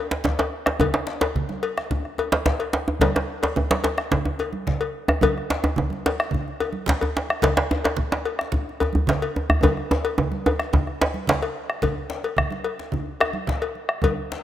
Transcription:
0.11 djembe slap
0.24 bombo low, djembe slap, djembe tone, low conga
0.38 cowbell, djembe slap, high conga
0.66 bombo rim, djembe slap, high conga
0.80 bombo rim, bombo low, cowbell, djembe tone, high conga, djembe bass, low conga
0.94 djembe slap
1.07 djembe slap
1.21 cowbell, djembe slap
1.35 bombo low, low conga
1.49 djembe tone, high conga
1.63 cowbell
1.77 bombo rim, djembe slap
1.91 bombo low, low conga, djembe bass
2.05 bombo rim
2.18 bombo rim, cowbell, djembe slap, djembe tone
2.32 djembe slap, high conga
2.46 bombo rim, bombo low, djembe slap, low conga
2.59 bombo rim, cowbell
2.73 bombo rim, djembe slap
2.88 djembe tone
3.00 bombo low, cowbell, djembe slap, high conga, djembe tone, low conga, djembe bass
3.15 bombo rim, djembe slap
3.43 cowbell, djembe slap
3.56 bombo low, djembe tone, low conga
3.71 djembe slap, high conga, djembe tone
3.84 cowbell, djembe slap
3.98 bombo rim, djembe slap
4.11 bombo low, djembe slap, low conga, djembe bass
4.25 djembe slap, djembe tone
4.39 cowbell, djembe tone
4.53 high conga
4.67 bombo low, djembe slap, low conga
4.80 cowbell, high conga
5.08 bombo rim, high conga, djembe tone
5.21 bombo low, cowbell, high conga, djembe tone, low conga, djembe bass
5.38 bombo rim, djembe slap
5.50 djembe slap
5.64 djembe slap, djembe tone
5.76 bombo low, djembe tone, low conga
5.90 djembe slap, high conga, djembe tone
6.06 cowbell, djembe slap
6.20 bombo rim, djembe slap
6.31 bombo low, low conga, djembe bass
6.48 djembe slap
6.60 cowbell, djembe tone
6.73 high conga
6.86 bombo low, djembe slap, low conga
7.01 cowbell, high conga, djembe tone
7.17 djembe slap
7.29 bombo rim, high conga
7.42 bombo low, cowbell, djembe slap, high conga, djembe tone, low conga, djembe bass
7.57 bombo rim, djembe slap
7.71 djembe slap, djembe tone
7.84 cowbell, djembe slap
7.97 bombo low, low conga
8.12 djembe slap, djembe tone
8.25 cowbell, djembe slap
8.39 bombo rim, djembe slap
8.52 bombo low, low conga, djembe bass
8.69 djembe slap
8.80 cowbell, djembe tone
8.83 djembe tone
8.93 high conga, djembe bass
9.07 bombo low, djembe slap, low conga
9.21 cowbell, high conga
9.36 djembe tone
9.49 bombo rim, high conga, djembe bass
9.63 bombo low, cowbell, high conga, djembe tone, low conga, djembe bass
9.77 bombo rim, high conga
9.91 djembe slap, djembe tone
10.05 cowbell
10.18 bombo low, djembe tone, low conga
10.32 djembe slap, high conga, djembe tone
10.46 cowbell, djembe tone
10.59 bombo rim, djembe slap
10.73 bombo low, djembe tone, low conga, djembe bass
10.87 bombo rim
11.01 djembe slap, djembe tone
11.14 djembe slap, high conga
11.27 bombo low, djembe slap, low conga
11.42 bombo rim, cowbell, djembe slap, high conga
11.70 bombo rim
11.82 bombo rim, bombo low, cowbell, high conga, djembe tone, low conga, djembe bass
12.10 djembe slap
12.23 cowbell, high conga
12.37 bombo rim, bombo low, low conga
12.50 high conga, djembe tone
12.64 cowbell, djembe slap
12.79 djembe slap
12.92 bombo low, high conga, low conga, djembe bass
13.20 bombo rim, cowbell, djembe tone
13.33 bombo rim, high conga
13.47 bombo low, djembe slap, low conga
13.62 bombo rim, cowbell, djembe slap
13.75 high conga
13.89 bombo rim
14.02 bombo rim, bombo low, cowbell, high conga, djembe tone, low conga, djembe bass
14.32 djembe slap

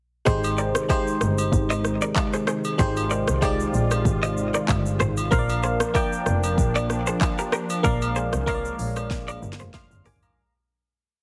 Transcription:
0.25 G#1 C3 D#3 G#3 D#4 G4 G#4 C5, kick, shaker
0.44 high agogo, shaker
0.58 A#4 D5, shaker
0.75 cross-stick, shaker
0.88 G#3 D#4 G4 G#4 C5, kick, high agogo, low woodblock, shaker
1.07 shaker
1.21 G1, cross-stick, shaker
1.38 high agogo, shaker
1.53 G#1, kick, shaker
1.70 C5 D#5, high agogo, shaker
1.85 cross-stick, shaker
2.02 A#4 D5, shaker
2.16 kick, clap, high agogo, low woodblock, shaker
2.33 G#4 C5, shaker
2.47 G#4 C5, cross-stick, shaker
2.65 high agogo, shaker
2.78 G#1 G#3 D#4 F4 G4 G#4 C5, kick, shaker
2.97 high agogo, shaker
3.11 A#4 D5, shaker
3.28 C2, cross-stick, shaker
3.41 G#3 D#4 G4 G#4 C5 D5, kick, high agogo, low woodblock, shaker
3.60 shaker
3.74 A#1, shaker
3.91 cross-stick, high agogo, shaker
4.05 G#1, kick, shaker
4.23 C5 D#5, high agogo, shaker
4.37 shaker
4.54 A#4 D5, cross-stick, shaker
4.69 G1, kick, clap, high agogo, low woodblock, shaker
4.86 shaker
5.00 G#1 G#4 C5, cross-stick, shaker
5.17 high agogo, shaker
5.31 A#1 F3 A#3 D4 F4 A#4 C5 F5, kick, shaker
5.39 D5
5.49 high agogo, shaker
5.63 G#4 C5, shaker
5.80 cross-stick, shaker
5.94 A#3 F4 A#4 D5 G5, kick, high agogo, low woodblock, shaker
6.13 shaker
6.26 F1, cross-stick, shaker
6.44 high agogo, shaker
6.58 A#1, kick, shaker
6.75 A#4 D5, high agogo, shaker
6.90 cross-stick, shaker
7.07 G#4 C5, shaker
7.21 kick, clap, high agogo, low woodblock, shaker
7.39 G4 A#4, shaker
7.52 G4 A#4, cross-stick, shaker
7.70 high agogo, shaker
7.83 A#1 G#3 A#3 F4 A#4 D5 F5, kick, shaker
8.02 high agogo, shaker
8.16 G#4 C5, shaker
8.33 C2, cross-stick, shaker
8.46 A#3 F4 A#4 C#5 F5, kick, high agogo, low woodblock, shaker
8.54 D5
8.65 shaker
8.79 A#1, open hi-hat, shaker
8.96 cross-stick, high agogo, shaker
9.11 kick, snare, shaker
9.28 A#4 D5, high agogo, shaker
9.42 G1, shaker
9.53 snare
9.60 F1 G#4 C5, shaker
9.74 C6 F6, kick, snare, high agogo, low woodblock, shaker
9.91 G1, floor tom, shaker
10.05 G#1 G4 A#4 G#5 D6, open hi-hat, shaker
10.16 floor tom
10.23 F5 A#5, high agogo, shaker

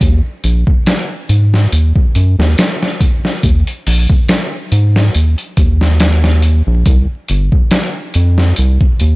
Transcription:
0.01 D#2, kick, closed hi-hat
0.44 A#1, closed hi-hat
0.67 kick
0.86 snare, closed hi-hat
1.29 G#2, closed hi-hat
1.54 snare
1.72 D#2, closed hi-hat
1.96 kick
2.15 F#2, closed hi-hat
2.39 D#2, snare
2.58 snare, closed hi-hat
2.83 snare
3.01 kick, closed hi-hat
3.25 snare
3.43 D#2, kick, closed hi-hat
3.67 closed hi-hat
3.87 A#1, open hi-hat
4.10 kick
4.29 snare, closed hi-hat
4.72 G#2, closed hi-hat
4.96 snare
5.15 D#2, closed hi-hat
5.38 closed hi-hat
5.57 D#2, kick, closed hi-hat
5.81 snare
6.00 snare, closed hi-hat
6.24 snare
6.42 closed hi-hat
6.67 A#1
6.86 C2, kick, closed hi-hat
7.28 G1, closed hi-hat
7.52 kick
7.71 snare, closed hi-hat
8.14 F2, closed hi-hat
8.38 snare
8.56 C2, closed hi-hat
8.81 kick
9.00 D#2, closed hi-hat

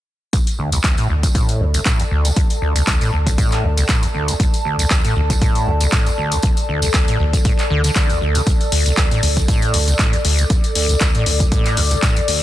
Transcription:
0.33 D2 A4, kick, closed hi-hat, tambourine
0.46 D5, closed hi-hat, tambourine
0.58 D2
0.72 C2, closed hi-hat, tambourine
0.84 D2, kick, clap, closed hi-hat, tambourine
0.97 A2, closed hi-hat, tambourine
1.09 D2
1.23 D#2, kick, closed hi-hat, tambourine
1.35 A2 A5, kick, closed hi-hat, tambourine
1.49 closed hi-hat, tambourine
1.60 D2 F2
1.74 C2, closed hi-hat, tambourine
1.85 A2, kick, clap, closed hi-hat, tambourine
1.99 D2, closed hi-hat, tambourine
2.11 D2
2.25 C2, closed hi-hat, tambourine
2.36 D2, kick, closed hi-hat, tambourine
2.50 closed hi-hat, tambourine
2.62 D2
2.76 C2, closed hi-hat, tambourine
2.87 D2, kick, clap, closed hi-hat, tambourine
3.01 A2, closed hi-hat, tambourine
3.13 D2
3.27 D#2, kick, closed hi-hat, tambourine
3.38 A2, kick, closed hi-hat, tambourine
3.52 clap, closed hi-hat, tambourine
3.63 D2 F2
3.77 C2, closed hi-hat, tambourine
3.88 A2, kick, clap, closed hi-hat, tambourine
4.03 D2, closed hi-hat, tambourine
4.14 D2
4.28 C2, closed hi-hat, tambourine
4.40 D2, kick, closed hi-hat, tambourine
4.54 closed hi-hat, tambourine
4.65 D2
4.79 C2, closed hi-hat, tambourine
4.90 D2, kick, clap, closed hi-hat
5.05 A2, closed hi-hat, tambourine
5.16 D2
5.30 D#2, kick, closed hi-hat, tambourine
5.42 A2, kick, closed hi-hat, tambourine
5.55 closed hi-hat, tambourine
5.67 D2 F2
5.80 C2, closed hi-hat, tambourine
5.92 A2, kick, clap, closed hi-hat, tambourine
6.06 D2, closed hi-hat, tambourine
6.18 D2
6.32 C2, closed hi-hat, tambourine
6.42 D2, kick, closed hi-hat, tambourine
6.57 closed hi-hat, tambourine
6.69 D2
6.82 C2, closed hi-hat, tambourine
6.94 D2, kick, clap, closed hi-hat, tambourine
7.08 A2, closed hi-hat, tambourine
7.20 D2
7.33 D#2, kick, closed hi-hat, tambourine
7.45 A2, kick, closed hi-hat, tambourine
7.59 clap, closed hi-hat, tambourine
7.70 D2 D3
7.84 D3, closed hi-hat, tambourine
7.95 D3, kick, clap, closed hi-hat, tambourine
8.10 D2, closed hi-hat, tambourine
8.21 D2
8.35 D3, closed hi-hat, tambourine
8.47 D2, kick, closed hi-hat, tambourine
8.61 closed hi-hat, tambourine
8.72 D2, open hi-hat
8.86 C2, closed hi-hat, tambourine
8.97 D2, kick, clap, closed hi-hat
9.11 A2, closed hi-hat, tambourine
9.23 D2, open hi-hat
9.37 D#2, kick, closed hi-hat, tambourine
9.48 A2 D6, kick, closed hi-hat, tambourine
9.62 closed hi-hat, tambourine
9.74 D2 F2, open hi-hat
9.88 C2, closed hi-hat, tambourine
9.99 A2, kick, clap, closed hi-hat
10.13 D2, closed hi-hat, tambourine
10.25 D2, open hi-hat
10.38 C2, closed hi-hat, tambourine
10.50 D2, kick, closed hi-hat, tambourine
10.64 closed hi-hat, tambourine
10.75 D2, open hi-hat
10.89 C2, closed hi-hat, tambourine
11.01 D2, kick, clap, closed hi-hat, tambourine
11.15 A2, closed hi-hat, tambourine
11.26 D2, open hi-hat
11.40 D#2, kick, closed hi-hat, tambourine
11.52 A2, kick, closed hi-hat, tambourine
11.65 clap, closed hi-hat, tambourine
11.77 D2 F2, open hi-hat
11.91 C2, closed hi-hat, tambourine
12.02 A2, kick, clap, closed hi-hat, tambourine
12.16 D2, closed hi-hat, tambourine
12.28 D2, open hi-hat

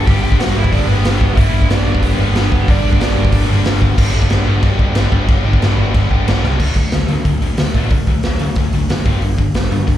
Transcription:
Already playing: D4
0.06 G1 G2 D3 G3 G4 G5, kick, open hi-hat
0.10 B3 D4
0.22 G1 G4 G5
0.32 kick
0.38 G1 F#4 F#5, snare, open hi-hat
0.55 G1 G2 D3 G3 B3 D4 E4 E5
0.64 kick
0.71 G1 G2 D3 G3 B3 D4 D5, kick, open hi-hat
0.88 G1 G2 D3 G3 B3 B4
1.04 G1 G2 D3 G3, snare, open hi-hat
1.21 G1, kick
1.35 G1 G2 D3 G3 B3 E4 E5, kick, open hi-hat
1.40 D4
1.53 G1
1.62 kick
1.69 G1 D4 D5, snare, open hi-hat
1.85 G1 G2 D3 G3 B3 D4
1.95 kick
2.01 G1 G2 D3 G3 B3 B4, kick, open hi-hat
2.05 D4
2.18 G1 D3 G3 B3 B4
2.23 G2
2.35 G1 G2 D3 G3, snare, open hi-hat
2.50 G1 B3 B4, kick
2.67 G1 G2 D3 G3 B3 D4 D5, kick, open hi-hat
2.84 G1
2.93 kick
3.00 G1 D4 D5, snare, open hi-hat
3.16 G1 G2 D3 G3 B3 D4
3.25 kick
3.32 G1 G2 D3 G3 B3 D4, kick, open hi-hat
3.49 G1 G2 D3 G3
3.64 G1 G2 D3 G3, snare, open hi-hat
3.82 G1, kick
3.97 G1 G2 D3 G3 B3 D4 G4, kick, crash
4.13 G1 G2 D3 G3 B3 D4 G4
4.22 kick
4.29 G1 G2 D3 G3 B3 D4 G4, snare, crash
4.46 G1 G2 D3 G3 B3 D4 G4
4.63 G2 D3 G3 B3 D4 G4, kick, crash
4.79 G2 D3 G3 B3 D4 G4, kick
4.95 G1 G2 D3 G3 B3 D4 G4, snare, crash
5.11 G1 G2 D3 G3 B3 D4 G4, kick
5.28 G1 G2 D3 G3 B3 D4 G4, kick, crash
5.45 G1 G2 D3 G3 B3 D4 G4
5.53 kick
5.62 G1 G2 D3 G3 B3 D4 G4, snare, crash
5.78 G1 G2 D3 G3 B3 D4 G4
5.94 G1 G2 D3 G3 B3 D4 G4, kick, crash
6.11 G1 G2 D3 G3 B3 D4 G4, kick
6.27 G1 G2 D3 G3 B3 D4 G4, snare, crash
6.43 C2 G2 D3 G3 B3 D4 G4, snare
6.59 D2 D3 F#3 A3 D4, kick, crash
6.76 D2 D3 F#3 A3, kick, open hi-hat
6.92 D2 D3 F#3 A3, snare, open hi-hat
7.08 D3 F#3 A3, open hi-hat
7.25 D2 D3 F#3 A3, kick, open hi-hat
7.42 D2 D3 F#3 A3, open hi-hat
7.57 D2 D3 F#3 A3, snare, open hi-hat
7.74 A2 D3 F#3 A3 D4, kick, open hi-hat
7.90 D2 D3 F#3 A3, kick, open hi-hat
8.07 D2 D3 F#3 A3, kick, open hi-hat
8.23 D2 D3 F#3 A3, snare, open hi-hat
8.39 D3 F#3 A3, open hi-hat
8.55 D2 D3 F#3 A3, kick, open hi-hat
8.73 D2 D3 F#3 A3, open hi-hat
8.89 F#1 D3 F#3 A3, snare, open hi-hat
9.05 G1 G2 D3 G3, kick, open hi-hat
9.22 G1 G2 D3, open hi-hat
9.38 G1 G2 D3, kick, open hi-hat
9.54 G1 G2 D3, snare, open hi-hat
9.71 G2 D3, open hi-hat
9.88 G1 G2 D3, kick, open hi-hat

